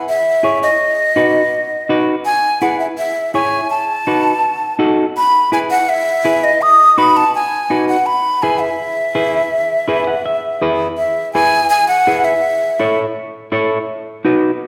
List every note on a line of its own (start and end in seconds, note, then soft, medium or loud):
0.09 0.59 E5 medium
0.43 0.69 E4 medium
0.43 0.69 G#4 medium
0.43 0.69 C#5 medium
0.63 2.04 D#5 medium
1.16 1.42 D#4 medium
1.16 1.42 F#4 medium
1.16 1.42 B4 medium
1.89 2.15 D#4 medium
1.89 2.15 F#4 medium
1.89 2.15 B4 medium
2.25 2.59 G#5 medium
2.62 2.87 E4 medium
2.62 2.87 G#4 medium
2.62 2.87 B4 medium
2.62 2.79 F#5 medium
2.80 2.86 E5 medium
2.98 3.32 E5 medium
3.34 3.60 E4 medium
3.34 3.60 G#4 medium
3.34 3.60 C#5 medium
3.34 3.68 G#5 medium
3.70 4.75 A5 medium
4.07 4.32 D#4 medium
4.07 4.33 F#4 medium
4.07 4.33 B4 medium
4.79 5.05 D#4 medium
4.79 5.05 F#4 medium
4.79 5.05 A4 medium
5.17 5.50 B5 medium
5.52 5.78 E4 medium
5.52 5.78 G#4 medium
5.52 5.78 B4 medium
5.52 5.59 G#5 medium
5.71 5.91 F#5 medium
5.89 6.45 E5 medium
6.25 6.50 E4 medium
6.25 6.50 G#4 medium
6.25 6.51 B4 medium
6.44 6.63 D#5 medium
6.62 7.00 D#6 loud
6.98 7.23 D#4 medium
6.98 7.23 F#4 medium
6.98 7.23 B4 medium
6.98 7.18 B5 medium
7.17 7.35 A5 medium
7.35 7.85 G#5 medium
7.70 7.96 D#4 medium
7.70 7.96 F#4 medium
7.70 7.96 B4 medium
7.89 8.08 F#5 medium
8.06 8.44 B5 medium
8.43 8.69 E4 medium
8.43 8.69 G#4 medium
8.43 8.69 B4 medium
8.43 8.62 G#5 medium
8.61 10.61 E5 medium
9.15 9.41 E4 medium
9.15 9.41 G#4 medium
9.15 9.41 B4 medium
9.88 10.07 E4 medium
9.88 10.14 G#4 medium
9.88 10.14 B4 loud
10.07 10.24 F#5 medium
10.26 10.59 E5 medium
10.61 10.87 E4 medium
10.61 10.87 G#4 medium
10.61 10.87 B4 medium
10.98 11.32 E5 medium
11.33 11.60 E4 medium
11.33 11.60 G#4 medium
11.33 11.60 B4 medium
11.33 11.67 G#5 loud
11.70 11.87 G#5 loud
11.88 12.26 F#5 loud
12.07 12.32 E4 medium
12.07 12.33 G#4 medium
12.07 12.33 B4 medium
12.25 12.97 E5 medium
12.80 13.05 E4 medium
12.80 13.05 A4 medium
12.80 13.05 C#5 medium
13.52 13.78 E4 medium
13.52 13.78 A4 medium
13.52 13.78 C#5 medium
14.25 14.50 D#4 medium
14.25 14.50 F#4 medium
14.25 14.51 B4 medium